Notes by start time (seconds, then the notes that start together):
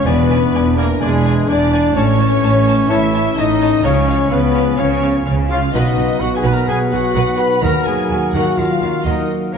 Already playing: G#4
0.05 E1 E2 E3 B3 D4 B4 D5 G#5
0.17 G#3
0.29 D5 G#5
0.41 B4
0.53 E1 E2 D5 G#5
0.64 D6
0.76 A#3 G#4 A#4 D5 G#5
0.89 D5
1.00 E1 E2 E3 G#3 G#4 D5 G#5
1.12 G#3
1.25 D5 G#5
1.48 E1 E2 D4 D5 G#5
1.60 D6
1.72 G#4 D5 G#5
1.94 A1 A2 C#4 C#5 A5
2.07 E3
2.19 E4 C#5 A5
2.31 A4
2.42 A1 A2 C#5 A5
2.66 C#5 A5
2.78 E4
2.88 A1 A2 E4 C#5 E5 A5
3.01 E3
3.13 E4 C#5 A5
3.25 A4
3.36 A1 A2 D#4 C#5 D#5 A5 C#6
3.60 C#5 A5
3.83 C#2 C#3 F3 C#4 C#5 F5
3.95 C#4
4.07 F4 C#5 F5
4.19 G#4
4.30 C#2 C#3 B3 B4 C#5 F5 G#5
4.43 F5
4.54 G#4 C#5 F5
4.67 F4
4.77 C#2 C#3 C#4 C#5 F5
4.90 C#4
5.01 F4 C#5 F5
5.14 G#4
5.25 C#2 C#3 C#5 F5 G#5
5.38 F5
5.49 F4 G#4 C#5 F5
5.60 F4
5.72 B1 B2 F#3 B3 D#4 F#4 B4 D#5 F#5
5.84 B3
5.96 B1 B2 D#4 B4
6.07 F#4
6.20 B1 B2 F#4 B4 F#5 B5
6.31 D#5
6.35 G#4 G#5
6.43 B1 B2 B4
6.52 D#4 A#4 A#5
6.66 B1 B2 G#4 B4 G#5
6.78 B3
6.89 B1 B2 D#4 F#4 F#5
7.13 B1 B2 B4 B5
7.26 D#5
7.37 B4 B5
7.50 D#4
7.61 D#2 D#3 A#3 A#4 F#5 A#5
7.73 F#3
7.86 D#2 D#3 G#4 A#4 G#5
7.97 D#5
8.10 D#2 D#3 F#4
8.32 D#2 D#3 F#4 A#4 F#5
8.45 A#4
8.57 D#2 D#3 F4 A#4 F5
8.70 F#3
8.81 D#2 D#3 F#4 A#4
8.93 D#5
9.05 D#2 D#3 D#4 A#4 D#5 F#5
9.28 F#4
9.40 A#4
9.53 C#2 C#3 A#3 A#4 C#5 F5